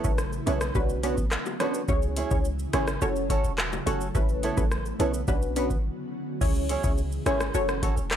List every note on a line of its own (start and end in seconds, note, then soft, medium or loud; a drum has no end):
0.00 0.74 C#3 medium
0.00 0.74 E3 medium
0.00 0.73 A3 medium
0.00 1.86 B3 medium
0.00 0.10 E4 medium
0.00 0.74 E4 medium
0.00 0.10 A4 medium
0.00 0.11 C#5 medium
0.04 0.40 A1 medium
0.04 0.21 C#4 medium
0.04 0.21 E4 medium
0.04 0.21 A4 medium
0.04 0.21 B4 medium
0.04 kick loud
0.04 shaker medium
0.18 cross-stick medium
0.18 shaker medium
0.33 shaker medium
0.46 0.70 B1 loud
0.46 0.67 B3 medium
0.46 0.63 C#4 medium
0.46 0.63 E4 medium
0.46 0.61 E4 loud
0.46 0.63 A4 medium
0.46 0.60 A4 loud
0.46 0.63 B4 medium
0.46 0.60 C#5 medium
0.46 closed hi-hat medium
0.46 low bongo medium
0.46 shaker medium
0.61 muted nylon-string guitar stroke medium
0.61 cross-stick loud
0.61 shaker medium
0.75 1.22 B1 loud
0.75 1.87 D3 medium
0.75 1.87 F#3 medium
0.75 1.01 C#4 medium
0.75 1.87 C#4 medium
0.75 1.01 D4 medium
0.75 1.87 F#4 medium
0.75 1.01 F#4 medium
0.75 1.02 B4 loud
0.75 kick medium
0.75 high bongo medium
0.75 shaker medium
0.89 shaker medium
1.03 1.23 B3 medium
1.03 1.20 C#4 medium
1.03 1.20 D4 medium
1.03 1.17 D4 medium
1.03 1.20 F#4 medium
1.03 1.17 F#4 medium
1.03 1.20 B4 medium
1.03 1.16 C#5 loud
1.03 closed hi-hat medium
1.03 shaker medium
1.17 muted nylon-string guitar stroke soft
1.17 kick medium
1.17 shaker medium
1.31 cross-stick loud
1.31 clap loud
1.31 shaker medium
1.46 high bongo medium
1.46 shaker soft
1.60 1.80 B3 medium
1.60 1.76 C#4 medium
1.60 1.76 D4 medium
1.60 1.80 D4 loud
1.60 1.76 F#4 medium
1.60 1.80 F#4 loud
1.60 1.76 B4 medium
1.60 1.81 C#5 loud
1.60 cross-stick loud
1.60 closed hi-hat medium
1.60 low bongo medium
1.60 shaker medium
1.74 shaker medium
1.88 2.24 C#2 loud
1.88 4.13 C#3 medium
1.88 3.01 E3 medium
1.88 3.01 G#3 medium
1.88 2.27 C#4 medium
1.88 2.28 E4 medium
1.88 3.01 E4 medium
1.88 3.01 G#4 medium
1.88 2.28 G#4 medium
1.88 2.28 C#5 loud
1.88 kick loud
1.88 high bongo medium
1.88 shaker medium
2.02 shaker medium
2.16 2.36 C#4 medium
2.16 2.37 E4 medium
2.16 2.37 G#4 medium
2.16 2.37 C#5 loud
2.16 closed hi-hat medium
2.16 shaker medium
2.31 2.66 C#2 medium
2.31 2.47 C#4 medium
2.31 2.47 E4 medium
2.31 2.47 G#4 medium
2.31 2.47 C#5 medium
2.31 kick loud
2.31 shaker medium
2.45 shaker medium
2.59 shaker medium
2.73 2.97 G#1 medium
2.73 2.93 C#4 medium
2.73 2.90 C#4 medium
2.73 2.90 E4 medium
2.73 2.87 E4 medium
2.73 2.90 G#4 medium
2.73 2.87 G#4 loud
2.73 2.90 C#5 medium
2.73 2.86 C#5 loud
2.73 cross-stick loud
2.73 closed hi-hat medium
2.73 low bongo medium
2.73 shaker medium
2.87 muted nylon-string guitar stroke soft
2.87 cross-stick loud
2.87 shaker medium
3.02 3.37 F#1 loud
3.02 4.14 F#3 medium
3.02 5.26 A3 medium
3.02 3.28 C#4 medium
3.02 3.28 F#4 medium
3.02 4.14 F#4 medium
3.02 4.14 A4 medium
3.02 3.28 A4 medium
3.02 3.28 C#5 loud
3.02 high bongo medium
3.02 shaker medium
3.16 shaker medium
3.30 3.50 C#4 loud
3.30 3.46 C#4 medium
3.30 3.46 F#4 medium
3.30 3.50 F#4 medium
3.30 3.46 A4 medium
3.30 3.50 A4 loud
3.30 3.46 C#5 medium
3.30 3.50 C#5 loud
3.30 kick loud
3.30 closed hi-hat medium
3.30 shaker medium
3.44 3.79 E1 medium
3.44 shaker medium
3.58 cross-stick loud
3.58 clap loud
3.58 shaker medium
3.73 high bongo medium
3.73 shaker medium
3.86 4.10 F#1 medium
3.86 4.06 C#4 medium
3.86 4.03 C#4 medium
3.86 4.03 F#4 medium
3.86 4.07 F#4 medium
3.86 4.03 A4 medium
3.86 4.07 A4 loud
3.86 4.03 C#5 medium
3.86 4.07 C#5 medium
3.86 closed hi-hat medium
3.86 low bongo medium
3.86 shaker medium
4.01 shaker medium
4.15 4.50 A1 loud
4.15 5.27 C#3 medium
4.15 5.27 E3 medium
4.15 6.39 B3 medium
4.15 4.54 C#4 loud
4.15 5.27 E4 medium
4.15 4.54 E4 medium
4.15 4.54 A4 medium
4.15 4.54 B4 loud
4.15 kick loud
4.15 high bongo medium
4.15 shaker medium
4.29 shaker medium
4.43 4.63 B3 medium
4.43 4.63 E4 loud
4.43 4.63 A4 loud
4.43 4.64 C#5 loud
4.43 closed hi-hat medium
4.43 shaker medium
4.57 4.93 A1 medium
4.57 4.73 C#4 medium
4.57 4.73 E4 medium
4.57 4.74 A4 medium
4.57 4.74 B4 medium
4.57 kick loud
4.57 high bongo medium
4.57 shaker medium
4.71 cross-stick medium
4.71 shaker medium
4.86 shaker medium
4.99 5.23 B1 loud
4.99 5.19 B3 medium
4.99 5.16 C#4 medium
4.99 5.16 E4 medium
4.99 5.14 E4 medium
4.99 5.16 A4 medium
4.99 5.13 A4 medium
4.99 5.16 B4 medium
4.99 5.13 C#5 loud
4.99 closed hi-hat medium
4.99 low bongo medium
4.99 shaker medium
5.14 muted nylon-string guitar stroke soft
5.14 shaker medium
5.28 5.75 B1 loud
5.28 6.40 D3 medium
5.28 6.40 F#3 medium
5.28 5.54 C#4 loud
5.28 6.40 C#4 medium
5.28 5.54 D4 medium
5.28 5.54 F#4 medium
5.28 6.40 F#4 medium
5.28 5.54 B4 loud
5.28 kick medium
5.28 high bongo medium
5.28 shaker medium
5.42 shaker medium
5.56 5.76 B3 medium
5.56 5.72 C#4 medium
5.56 5.73 D4 medium
5.56 5.70 D4 medium
5.56 5.73 F#4 medium
5.56 5.70 F#4 medium
5.56 5.73 B4 medium
5.56 5.69 C#5 medium
5.56 closed hi-hat medium
5.56 shaker medium
5.70 muted nylon-string guitar stroke medium
5.70 kick medium
5.70 shaker medium
6.41 6.76 C#2 loud
6.41 7.53 C#3 medium
6.41 7.53 E3 medium
6.41 7.53 G#3 medium
6.41 6.80 C#4 medium
6.41 6.80 E4 medium
6.41 7.53 E4 medium
6.41 7.53 G#4 medium
6.41 6.80 G#4 medium
6.41 6.81 C#5 loud
6.41 kick loud
6.41 crash loud
6.41 shaker medium
6.55 shaker medium
6.69 6.89 C#4 loud
6.69 6.90 E4 loud
6.69 6.90 G#4 loud
6.69 6.90 C#5 loud
6.69 closed hi-hat medium
6.69 shaker medium
6.84 7.19 C#2 medium
6.84 7.00 C#4 medium
6.84 7.00 E4 medium
6.84 7.00 G#4 medium
6.84 7.00 C#5 medium
6.84 kick loud
6.84 shaker medium
6.98 shaker medium
7.12 shaker medium
7.26 7.50 G#1 loud
7.26 7.46 C#4 medium
7.26 7.42 C#4 medium
7.26 7.42 E4 medium
7.26 7.40 E4 medium
7.26 7.42 G#4 medium
7.26 7.39 G#4 medium
7.26 7.43 C#5 medium
7.26 7.39 C#5 medium
7.26 cross-stick loud
7.26 closed hi-hat medium
7.26 shaker medium
7.40 muted nylon-string guitar stroke medium
7.40 cross-stick loud
7.40 shaker medium
7.54 7.90 F#1 loud
7.54 8.16 C#3 medium
7.54 8.16 F#3 medium
7.54 8.16 A3 medium
7.54 7.80 C#4 loud
7.54 7.81 F#4 medium
7.54 8.16 F#4 medium
7.54 8.16 A4 medium
7.54 7.81 A4 medium
7.54 7.81 C#5 loud
7.54 shaker medium
7.69 cross-stick loud
7.69 shaker medium
7.82 8.02 C#4 medium
7.82 7.99 C#4 medium
7.82 7.99 F#4 medium
7.82 7.96 F#4 loud
7.82 7.99 A4 medium
7.82 7.96 A4 loud
7.82 7.99 C#5 medium
7.82 7.95 C#5 loud
7.82 kick loud
7.82 closed hi-hat medium
7.82 shaker medium
7.97 8.16 E1 medium
7.97 muted nylon-string guitar stroke soft
7.97 shaker medium
8.11 cross-stick loud
8.11 clap loud
8.11 shaker medium